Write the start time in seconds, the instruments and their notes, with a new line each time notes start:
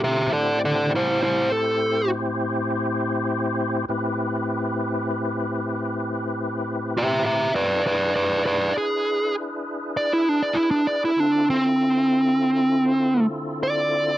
Already playing: tonewheel organ D3 A3 C4 E4 F4
0.04 lead electric guitar G4 E5
0.26 tonewheel organ A2 C4 E4 G4 C5
0.33 lead electric guitar A4 D5
0.65 lead electric guitar A4 D5
0.95 lead electric guitar E4 C5
1.23 lead electric guitar E4 C5
1.52 lead electric guitar A4
3.89 tonewheel organ A2 C4 E4 G4 B4
6.97 lead electric guitar G4 E5
7.24 lead electric guitar G4 E5
7.50 tonewheel organ C4 D#4 F4 A4
7.55 lead electric guitar B4 D5
7.82 tonewheel organ D4 E4 G#4 B4
7.87 lead electric guitar B4 D5
8.16 lead electric guitar B4 D5
8.46 lead electric guitar B4 D5
8.78 lead electric guitar G#4
9.97 lead electric guitar D5
10.13 lead electric guitar E4
10.29 lead electric guitar D4
10.42 lead electric guitar D5
10.54 lead electric guitar E4
10.71 lead electric guitar D4
10.87 lead electric guitar D5
11.05 lead electric guitar E4
11.16 tonewheel organ D3 C4 E4 F4 A4, lead electric guitar D4
11.50 lead electric guitar C4
13.63 lead electric guitar D5